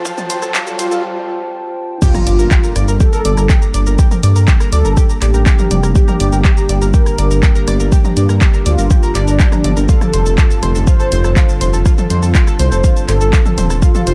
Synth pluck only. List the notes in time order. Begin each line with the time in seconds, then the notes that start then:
0.05 F4
0.18 A5
0.30 C5
0.42 A4
0.55 F4
0.67 A4
0.79 C5
0.91 A4
2.02 G4
2.15 A#5
2.27 D5
2.39 A#4
2.51 G4
2.64 A#4
2.76 D5
2.88 A#4
3.00 G4
3.13 A#4
3.25 D5
3.37 A#4
3.50 G4
3.62 A#5
3.74 D5
3.87 A#4
3.99 G4
4.11 A#4
4.23 D5
4.36 A#4
4.48 G4
4.60 A#4
4.73 D5
4.85 A#4
4.97 G4
5.10 A#5
5.22 D5
5.34 A#4
5.46 G4
5.59 A#4
5.71 D5
5.83 A#4
5.96 G4
6.08 A#4
6.20 D5
6.33 A#4
6.45 G4
6.57 A#5
6.69 D5
6.82 A#4
6.94 G4
7.06 A#4
7.18 D5
7.31 A#4
7.43 G4
7.55 A#4
7.68 D5
7.80 A#4
7.92 G4
8.05 A#5
8.17 D5
8.29 A#4
8.41 G4
8.54 A#4
8.66 D5
8.78 A#4
8.91 G4
9.03 A#4
9.15 D5
9.28 A#4
9.40 G4
9.52 A#5
9.64 D5
9.77 A#4
9.89 F4
10.01 A5
10.14 C5
10.26 A4
10.38 F4
10.51 A4
10.63 C5
10.75 A4
10.87 F4
11.00 A4
11.12 C5
11.24 A4
11.36 F4
11.49 A5
11.61 C5
11.74 A4
11.86 F4
11.98 A4
12.10 C5
12.23 A4
12.35 F4
12.47 A4
12.59 C5
12.72 A4
12.84 F4
12.96 A5
13.09 C5
13.21 A4
13.33 F4
13.46 A4
13.58 C5
13.70 A4
13.82 F4
13.95 A4
14.07 C5